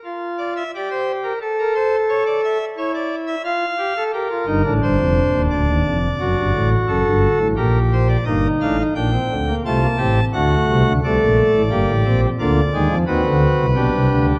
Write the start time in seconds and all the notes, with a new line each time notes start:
0.05 F4
0.38 D5
0.57 E5
0.75 G4 D5
0.91 C5
1.24 A#4
1.41 A4
1.59 A#4
1.75 C5
2.09 C#5
2.26 D5
2.44 E5
2.77 E4 C#5
2.95 D5
3.27 E5
3.44 F4 F5
3.79 G4
3.97 A4
4.13 G4 A#4
4.31 F4
4.47 G1 G2 D#4
4.64 A1 A2 D4
4.82 G1 G2 C5
4.98 F1 F2
5.32 D#1 D#2
5.51 D1 D2 D5
5.68 D#1 D#2
5.86 F1 F2
6.20 F#1 F#2 F#4
6.37 G1 G2
6.53 A1 A2
6.87 F#1 F#2 A4
7.06 G1 G2
7.39 A1 A2
7.56 A#1 A#2 G4 A#4
7.93 C5
8.09 D5
8.25 G1 G2 A#3 D#4 D#5
8.61 A1 A2 D4 F5
8.79 D#4
8.95 A#1 A#2 D4 G5
9.12 C4
9.30 D2 D3
9.48 A#3
9.65 C2 C3 A3 F4 A5
9.82 A#3
9.98 A1 A2 C4 G4
10.33 D2 D3 A3 F#4 F#5
10.68 C2 C3
10.86 D2 D3
11.04 C2 C3 A3 A4 D5
11.21 A#1 A#2
11.54 A1 A2
11.70 G1 G2 A#3 G4
11.89 A1 A2
12.05 A#1 A#2 C4
12.40 D2 D3 A#3 F4 D5
12.74 D#2 D#3 G#3 G#4
12.90 F2 F3
13.07 D#2 D#3 C4 F#4 B4
13.25 D2 D3
13.60 C2 C3
13.76 B1 B2 D4 G4
13.93 C2 C3
14.10 D2 D3